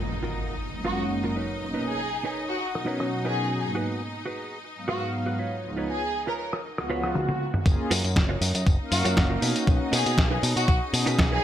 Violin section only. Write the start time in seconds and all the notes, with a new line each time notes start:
0.85 F#4
1.86 G#4
2.49 F#4
3.25 G#4
4.89 F#4
5.89 G#4
6.28 A#4
6.39 A#4
8.91 F#4
9.92 G#4
10.57 F#4
11.32 G#4